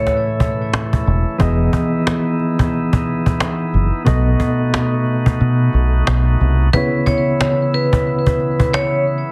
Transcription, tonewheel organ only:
Already playing: C#3 E3 A3 E4
1.38 B3 D#4 E4
4.05 A3 F#4
6.74 C#3 E3 B3 E4

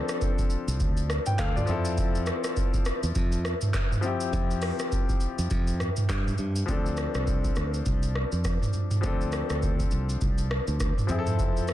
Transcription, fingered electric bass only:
0.68 C2
0.80 D2
1.39 D2
1.69 F2
3.03 E2
3.16 F2
4.33 F2
5.39 F2
5.51 F2
6.09 G2
6.39 G2
6.68 D2
7.15 C2
7.57 D2
7.86 C2
8.32 F2
9.04 D2
9.50 D2
9.92 C2
10.21 C2
10.68 D2
11.09 F2

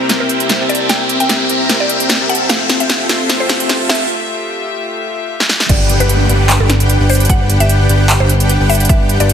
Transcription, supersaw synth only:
Already playing: C4 G4 A#4 E5 A#5
0.20 C4 G4 A#4 E5 G5
0.60 C4 G4 A#4 E5 A5
0.90 G4 E5 G5
1.20 C4 G4 A#4 E5 G5
1.49 C4 G4 A#4 E5 A#5
1.80 C4 G4 A#4 E5 G5
2.20 C4 G4 A#4 E5 A5
2.50 C4 F4 A4 E5 G5
2.80 C4 F4 A4 E5 G5
3.09 C4 F4 A4 E5 C6
3.40 C4 F4 A4 E5 G5
3.80 C4 F4 A4 E5 A5
5.69 D4 G4 B4 F#5 G5
6.00 D4 G4 B4 F#5 G5
6.29 D4 G4 B4 F#5 G5
6.60 D4 G4 B4 F#5 G5
7.00 D4 G4 B4 F#5 G5
7.29 D4 G4 B4 F#5 G5
7.60 D4 G4 B4 F#5 G5
7.89 D4 G4 B4 F#5 G5
8.20 D4 G4 B4 F#5 G5
8.60 D4 G4 B4 F#5 G5
8.89 D4 G4 B4 F#5 G5
9.20 D4 G4 B4 F#5 G5

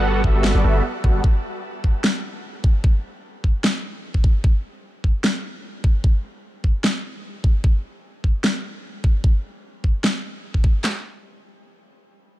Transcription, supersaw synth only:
Already playing: G3 B3 F#4 A4 F#5
0.24 F#4 E5
0.54 G3 B3 F#4 A4 D5
0.64 G3 B3 F#4 A4 E5
1.04 G3 B3 F#4 A4 F#5

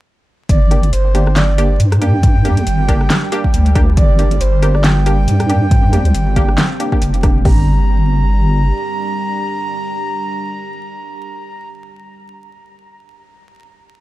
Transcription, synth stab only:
0.71 A#3 D4 G4
1.15 A#3 D4 G4
1.58 A#3 D4 G4
2.02 A#3 D4 G4
2.45 A#3 D4 G4
2.88 A#3 D4 G4
3.32 A#3 D4 G4
3.75 A#3 D4 G4
4.19 A#3 D4 G4
4.62 A#3 D4 G4
5.06 A#3 D4 G4
5.49 A#3 D4 G4
5.93 A#3 D4 G4
6.36 A#3 D4 G4
6.80 A#3 D4 G4
6.92 A#3 D4 G4
7.23 A#3 D4 G4
7.45 A#3 D4 G4

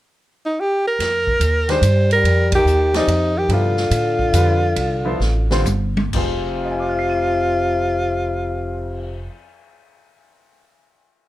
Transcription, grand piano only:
1.68 D#3 G#3 D4 G4 C5
2.93 F3 A#3 D#4 G#4 D5
3.49 C3 F3 B3 E4 G4
4.33 D3 G3 C4 F4 B4
5.05 F3 B3 E4 A4 C5
5.51 D3 G3 C4 F4 C5
6.14 F2 F3 C4 G#4 C5
6.64 D#5
6.71 G#5
6.80 D6
6.89 F6
6.99 C7
7.10 D#7

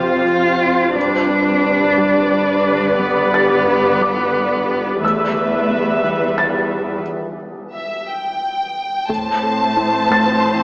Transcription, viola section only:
Already playing: C5 F5
0.96 B4 D5
5.03 B4 E5
9.10 C4 C5

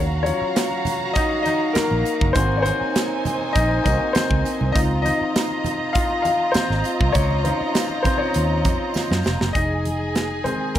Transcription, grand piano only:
0.23 F#3 C#4 F4 C#5
1.13 D#4 D#5
1.43 D#4 D#5
1.73 A#3 A#4
2.33 A#3 C4 F#4 C5
2.57 C#5
2.62 C4 C5
3.53 D#4 D#5
3.84 A#3 C4 D#4 F#4 D#5
4.13 C4 C5
4.72 C4 D#4 F4 D#5
5.02 D#4 D#5
5.93 F4 F5
6.22 F4 F5
6.52 C4 C5
7.12 C#4 C#5
7.44 D#4 F4 C5
8.03 C4 C5
8.18 C#4 C#5
9.53 D#4 D#5
10.44 D#3 G#3 C4 C5
10.74 A#4

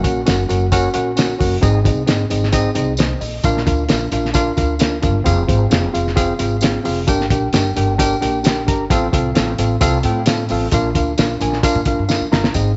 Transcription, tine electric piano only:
0.03 C#4 F#4 A#4 F#5
0.25 C#4 F#4 A#4 F#5
0.48 C#4 F#4 A#4 F#5
0.72 C#4 F#4 A#4 F#5
0.93 C#4 F#4 A#4 F#5
1.16 C#4 F#4 A#4 F#5
1.39 C#4 F#4 A#4 F#5
1.62 G#2 C4 D#4 G#4 D#5
1.84 C4 D#4 G#4 D#5
2.07 C4 D#4 G#4 D#5
2.30 C4 D#4 G#4 D#5
2.52 C4 D#4 G#4 D#5
2.75 C4 D#4 G#4 D#5
2.99 C5
3.21 D#5
3.44 A#2 D4 F4 A#4 F5
3.66 D4 F4 A#4 F5
3.88 D4 F4 A#4 F5
4.12 D4 F4 A#4 F5
4.34 D4 F4 A#4 F5
4.57 D4 F4 A#4 F5
4.79 D4 F4 A#4 F5
5.02 D4 F4 A#4 F5
5.24 C4 F4 G#4 F5
5.47 C4 F4 G#4 C5
5.70 C4 F4 G#4 F5
5.93 C4 F4 G#4 F5
6.16 C4 F4 G#4 F5
6.39 C4 F4 G#4 F5
6.61 C4 F4 G#4 F5
6.84 C4 F4 G#4 F5
7.07 G2 D4 G4 A#4 G5
7.30 D4 G4 A#4 G5
7.53 D4 G4 A#4 G5
7.76 D4 G4 A#4 G5
7.98 D4 G4 A#4 G5
8.21 D4 G4 A#4 G5
8.43 D4 G4 A#4 G5
8.67 D4 G4 A#4 A#5
8.90 A2 C4 F4 A4 F5
9.12 C4 F4 A4 F5
9.35 C4 F4 A4 F5
9.59 C4 F4 A4 F5
9.81 C4 F4 A4 F5
10.04 C4 F4 A4 G5
10.27 C4 F4 A4 F5
10.50 C4 F4 A4 F5
10.73 A#2 D4 F4 A#4 F5
10.95 D4 F4 A#4 F5
11.18 D4 F4 A#4 F5
11.40 D4 F4 A#4 G#5
11.63 D4 F4 A#4 F5
11.86 D4 F4 A#4 F5
12.08 D4 F4 A#4 F5
12.32 D4 F4 A#4 F5 A#5
12.54 G#2 C4 D#4 G#4 D#5

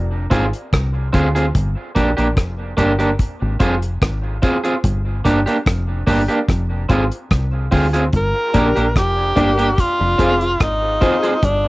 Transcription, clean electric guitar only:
0.30 C4 F4 G#4
1.13 C4 F4 G#4
1.35 C4 F4 G#4
1.95 A#3 D4 G4
2.17 A#3 D4 G4
2.77 A#3 D4 G4
2.99 A#3 D4 G4
3.60 C4 F4 G#4
4.42 C4 F4 G#4
4.64 C4 F4 G#4
5.25 A#3 D4 G4
5.46 A#3 D4 G4
6.07 A#3 D4 G4
6.29 A#3 D4 G4
6.89 C4 F4 G#4
7.71 C4 F4 G#4
7.93 C4 F4 G#4
8.54 A#3 D4 G4
8.76 A#3 D4 G4
9.36 A#3 D4 G4
9.58 A#3 D4 G4
10.18 C4 F4 G#4
11.01 C4 F4 G#4
11.23 C4 F4 G#4

